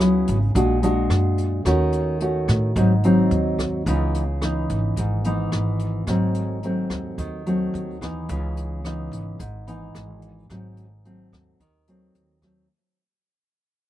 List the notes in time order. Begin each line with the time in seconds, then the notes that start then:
Already playing: C#2 C#3
0.00 F#3 B3 E4, cross-stick, closed hi-hat
0.27 G#1, closed hi-hat
0.55 A#1 A#2 G#3 D4 F#4, kick, closed hi-hat
0.83 G#3 D4 F#4, closed hi-hat
1.10 F#2, cross-stick, closed hi-hat
1.38 closed hi-hat
1.65 D#2 D#3 A3 C#4 F#4, kick, cross-stick, closed hi-hat
1.92 closed hi-hat
2.20 A3 C#4 F#4, closed hi-hat
2.48 A2, kick, cross-stick, closed hi-hat
2.76 G#1 G#2 F#3 C4 D#4, kick, closed hi-hat
3.03 F#3 C4 D#4, closed hi-hat
3.31 D#2, closed hi-hat
3.59 kick, cross-stick, closed hi-hat
3.86 C#2 C#3 E3 B3 D#4, kick, closed hi-hat
4.14 closed hi-hat
4.42 E3 B3 D#4, cross-stick, closed hi-hat
4.69 G#1, closed hi-hat
4.97 G#1 G#2, kick, closed hi-hat
5.24 E3 B3 D#4, closed hi-hat
5.52 G#1, cross-stick, closed hi-hat
5.79 closed hi-hat
6.07 G#1 G#2 F#3 A3 C4, kick, cross-stick, closed hi-hat
6.34 closed hi-hat
6.63 F#3 A3 C4, closed hi-hat
6.90 D#2, kick, cross-stick, closed hi-hat
7.18 D#2 D#3, kick, closed hi-hat
7.46 F#3 A3 C4, closed hi-hat
7.74 D#2, closed hi-hat
8.01 E3 B3 D#4, kick, cross-stick, closed hi-hat
8.29 C#2 C#3, kick, closed hi-hat
8.57 closed hi-hat
8.84 E3 B3 D#4, cross-stick, closed hi-hat
9.12 G#1, closed hi-hat
9.39 G#1 G#2, kick, closed hi-hat
9.67 E3 B3 D#4, closed hi-hat
9.95 G#1, cross-stick, closed hi-hat
10.22 closed hi-hat
10.50 G#1 G#2 F#3 A3 C4, kick, cross-stick, closed hi-hat
10.77 closed hi-hat
11.05 F#3 A3 C4, closed hi-hat
11.32 D#2, kick, cross-stick, closed hi-hat
11.60 D#2 D#3, kick, closed hi-hat
11.87 F#3 A3 C4, closed hi-hat
12.15 D#2, closed hi-hat
12.42 F#3 A3 C4, kick, cross-stick, closed hi-hat